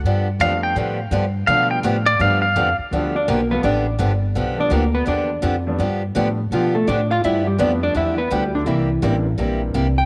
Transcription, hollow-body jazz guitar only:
X:1
M:4/4
L:1/8
Q:"Swing" 1/4=167
K:Gmix
V:1 name="Hollow-body jazz guitar"
z8 | z8 | z [Dd] [_B,_B] [=B,=B] [Dd]3 z | z [Dd] [_B,_B] [=B,=B] [Dd]3 z |
z4 [F,F] [A,A] [Dd] [Ff] | [Ee] [G,G] [B,B] [Dd] [Ee] [B,B] [G,G] [D,D] | [E,E]4 z3 g |]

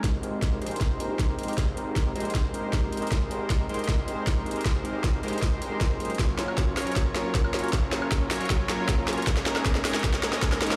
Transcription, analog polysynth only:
X:1
M:4/4
L:1/8
Q:1/4=156
K:Ab
V:1 name="Analog polysynth"
[A,EGBc]3 [A,EGBc]4- [A,EGBc] | [A,EGBc]3 [A,EGBc]4- [A,EGBc] | [A,EGBc]3 [A,EGBc]4- [A,EGBc] | [A,EGBc]3 [A,EGBc]4- [A,EGBc] |
[_G,DFBd]3 [G,DFBd]4- [G,DFBd] | [_G,DFBd]3 [G,DFBd]4- [G,DFBd] | [A,DEBd]3 [A,DEBd]4- [A,DEBd] |]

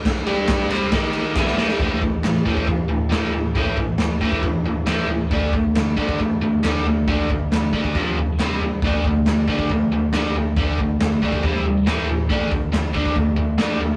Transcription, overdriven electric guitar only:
X:1
M:4/4
L:1/8
Q:1/4=137
K:D
V:1 name="Overdriven electric guitar" clef=bass
z [G,DG]2 [=C,G,=C] [^D,^A,^D]2 [E,B,E] [=A,,E,=A,] | [A,,E,A,] [A,,E,] [A,,E,] [A,,E,A,] [A,,E,] [A,,E,] [A,,E,A,] [A,,E,] | [A,,E,A,] [A,,E,] [A,,E,] [A,,E,A,] [A,,E,] [A,,E,] [A,,E,A,] [A,,E,] | [D,A,D] [D,A,] [D,A,] [D,A,D] [D,A,] [D,A,] [D,A,D] [D,A,] |
[D,A,D] [D,A,] [D,A,] [D,A,D] [=F,,=C,=F,] [F,,C,] [C,G,=C] [C,G,] | [D,A,D] [D,A,] [D,A,] [D,A,D] [D,A,] [D,A,] [D,A,D] [D,A,] | [D,A,D] [D,A,] [D,A,] [D,A,D] [=C,G,=C] [C,G,] [A,,E,A,] [A,,E,] | [D,A,D] [D,A,] [D,A,] [D,A,D] [D,A,] [D,A,] [D,A,D] [D,A,] |]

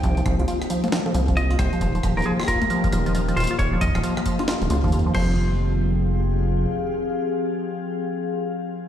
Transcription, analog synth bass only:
X:1
M:4/4
L:1/16
Q:"Swing 16ths" 1/4=135
K:Fm
V:1 name="Analog synth bass" clef=bass
C,, z C,, C,, z6 C,,4 C,, z | E,,, z E,,, E,,, z6 E,,,4 E,,, z | E,,, z E,,, E,,, z4 z E,,, D,, E,,3 F,,,2- | F,,,12 z4 |
z16 |]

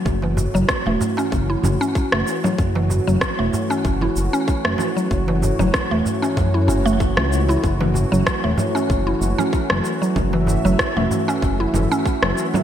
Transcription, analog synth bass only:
X:1
M:4/4
L:1/16
Q:"Swing 16ths" 1/4=95
K:F#m
V:1 name="Analog synth bass" clef=bass
F,,,3 F,,, z E,,, z2 F,,, z F,,, z2 F,,, z2 | F,,,3 F,,, z E,,, z2 F,,, z F,,, z2 F,,, z2 | F,,,3 F,,, z E,,, z2 F,,2 F,,,3 C,,3 | F,,,3 F,,, z E,,, z2 F,,, z F,,, z2 F,,, z2 |
F,,,3 F,,, z E,,, z2 F,,, z F,,, z2 F,,, z2 |]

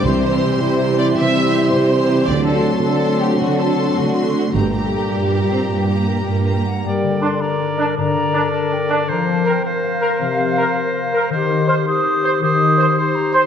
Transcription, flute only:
X:1
M:12/8
L:1/8
Q:3/8=107
K:Gm
V:1 name="Flute"
z12 | z12 | z8 z3 ^f | g2 c' b3 b3 a g a |
b a g f8 b | c'2 f' e'3 e'3 c' b c' |]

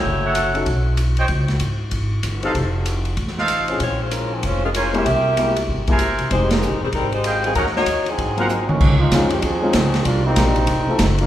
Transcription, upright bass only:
X:1
M:4/4
L:1/8
Q:"Swing" 1/4=192
K:Fm
V:1 name="Upright bass" clef=bass
_G,,,4 =B,,,4 | D,,2 A,,2 A,,,2 G,,,2 | F,,,4 =A,,,4 | B,,,4 F,,,4 |
C,,4 G,,,3 C,, | F,,,2- (3F,,, G,,, =E,,, A,,,4 | E,,2 E,,2 A,,,3 A,, | D,,2 F,,2 E,,2 D,,2 |
C,,2 B,,,2 F,,, z _G,,,2 |]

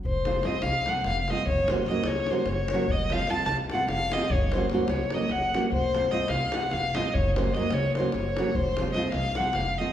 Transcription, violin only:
X:1
M:7/8
L:1/16
Q:1/4=148
K:none
V:1 name="Violin"
c4 _e2 f2 _g2 f3/2 f/2 e2 | _d2 c2 _e2 d2 c2 d4 | _e2 f2 a2 a2 _g2 f2 e2 | _d2 c2 c2 d2 _e2 _g3 z |
c4 _e2 f2 _g2 f2 e2 | _d2 c2 _e2 d2 c2 d4 | c4 _e2 f2 _g2 f2 e2 |]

